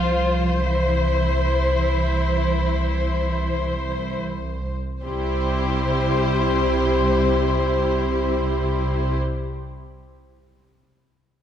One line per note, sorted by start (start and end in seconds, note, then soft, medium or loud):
0.00 4.71 C2 soft
0.00 0.59 F3 medium
0.00 0.59 F4 soft
0.00 4.23 C5 soft
0.00 4.75 C5 soft
0.59 4.26 E3 soft
0.59 4.27 E4 soft
5.03 9.18 C2 soft
5.03 9.16 C3 soft
5.03 9.17 G3 soft
5.03 9.17 E4 soft
5.03 9.16 G4 soft
5.03 9.17 C5 soft
5.03 9.18 C5 soft